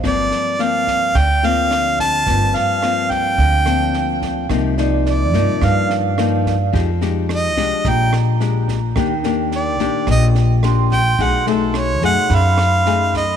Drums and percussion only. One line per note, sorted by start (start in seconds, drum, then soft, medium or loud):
0.03 kick medium
0.03 cross-stick medium
0.03 snare soft
0.31 snare soft
0.59 snare soft
0.87 kick soft
0.87 snare soft
1.15 kick medium
1.15 cross-stick medium
1.15 snare soft
1.43 snare soft
1.71 cross-stick medium
1.71 snare soft
1.99 kick soft
1.99 snare soft
2.27 kick medium
2.27 snare soft
2.55 snare soft
2.82 cross-stick medium
2.82 snare soft
3.10 kick soft
3.10 snare soft
3.38 kick medium
3.38 snare soft
3.66 cross-stick medium
3.66 snare soft
3.94 snare soft
4.22 kick soft
4.22 snare soft
4.49 kick medium
4.49 cross-stick medium
4.49 snare soft
4.78 snare soft
5.06 snare soft
5.33 kick soft
5.33 snare soft
5.62 kick medium
5.62 cross-stick medium
5.62 snare soft
5.90 snare soft
6.18 cross-stick medium
6.18 snare soft
6.46 kick soft
6.46 snare soft
6.73 kick medium
6.73 snare soft
7.01 snare soft
7.29 cross-stick medium
7.29 snare soft
7.57 kick soft
7.57 snare soft
7.84 kick medium
7.84 snare soft
8.13 cross-stick medium
8.13 snare soft
8.40 snare soft
8.68 kick soft
8.68 snare soft
8.96 kick medium
8.96 cross-stick medium
8.96 snare soft
9.23 snare soft
9.52 snare soft
9.79 kick soft
9.79 snare soft
10.07 kick medium
10.07 cross-stick medium
10.07 snare soft
10.35 snare soft
10.63 cross-stick medium
10.63 snare soft
10.91 kick soft
10.91 snare soft
11.19 kick medium
11.19 snare soft
11.47 snare soft
11.74 cross-stick medium
11.74 snare soft
12.02 kick soft
12.02 snare soft
12.30 kick medium
12.30 snare soft
12.58 cross-stick medium
12.58 snare soft
12.86 snare soft
13.14 kick soft
13.14 snare soft